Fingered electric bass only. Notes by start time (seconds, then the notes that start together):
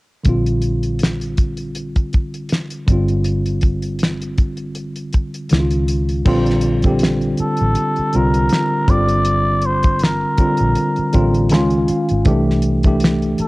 0.27 A#1
2.89 G1
5.52 C#2
6.27 A#1
7.40 muted fingered electric bass stroke
7.61 A1
7.99 muted fingered electric bass stroke
8.15 C2
8.89 G1
10.39 muted fingered electric bass stroke
10.61 A#1
10.99 muted fingered electric bass stroke
11.15 A1
11.52 C#2
11.89 muted fingered electric bass stroke
12.11 G#1
12.27 C2
13.39 muted fingered electric bass stroke